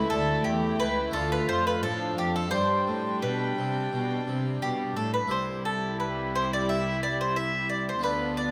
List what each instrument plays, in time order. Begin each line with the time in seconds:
Already playing: cello section C#2, harpsichord A3 E4 G4, viola section A3, violin section E4 E5
0.10 cello section D2, harpsichord D2, mandolin A4
0.44 cello section E2, harpsichord E2, mandolin G4, violin section G5
0.80 harpsichord C#2, cello section C#2, mandolin B4
1.11 cello section D2, harpsichord A3 D4 F4, viola section A3, violin section F4 F5, mandolin A4
1.16 harpsichord D2
1.32 mandolin B4
1.49 harpsichord F2, cello section F2, mandolin C5
1.67 mandolin B4
1.83 harpsichord A2, cello section A2, viola section F3, violin section D4 F5, mandolin A4
2.18 harpsichord F2, cello section F2, mandolin G4
2.36 mandolin A4
2.49 harpsichord G2 D4 G4, cello section G2, viola section G3, violin section D4 G5, mandolin C5
2.87 cello section A2, harpsichord A2
3.22 cello section B2, harpsichord B2, mandolin B4
3.58 cello section C3, harpsichord C3
3.92 cello section B2, harpsichord B2
4.28 harpsichord C3, cello section C3
4.62 cello section B2, harpsichord B2, mandolin G4
4.96 harpsichord A2, cello section A2, mandolin A4
5.14 mandolin B4
5.27 harpsichord C2 E4 G4, viola section G3, violin section E4, mandolin C5
5.32 cello section C2, violin section G4
5.65 mandolin A4
6.00 mandolin B4
6.35 mandolin C5
6.53 mandolin D5
6.69 mandolin E5
7.03 mandolin D5
7.21 mandolin C5
7.36 mandolin E5
7.69 mandolin D5
7.89 mandolin C5
7.99 harpsichord B3 D4 F4
8.03 cello section D2, harpsichord D2, viola section B3, violin section D4 F4, mandolin B4
8.37 mandolin D5